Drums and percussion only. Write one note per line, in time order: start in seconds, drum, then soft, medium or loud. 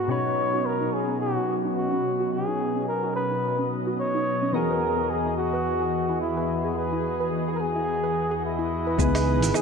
8.99 kick loud
8.99 cabasa medium
9.15 open hi-hat soft
9.15 cabasa soft
9.15 low woodblock medium
9.42 open hi-hat medium
9.42 cabasa medium
9.54 cabasa medium
9.54 low woodblock medium